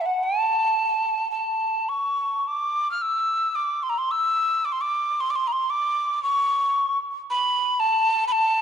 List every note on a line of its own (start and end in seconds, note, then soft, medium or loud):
0.01 0.07 E5 soft
0.06 0.25 F#5 medium
0.23 1.30 A5 medium
1.31 1.90 A5 soft
1.89 2.49 C#6 soft
2.48 2.91 D6 soft
2.91 3.03 F6 soft
3.02 3.57 E6 medium
3.55 3.84 D6 medium
3.83 3.91 C6 medium
3.90 3.99 A#5 soft
3.98 4.13 C6 medium
4.11 4.66 E6 medium
4.65 4.74 D6 medium
4.72 4.83 C6 medium
4.81 5.22 D6 medium
5.21 5.32 C6 medium
5.30 5.37 D6 soft
5.36 5.49 C6 medium
5.47 5.54 A#5 soft
5.52 5.72 C6 medium
5.70 6.22 D6 medium
6.23 6.98 C#6 medium
7.30 7.81 B5 medium
7.80 8.24 A5 medium
8.28 8.34 B5 medium
8.32 8.62 A5 medium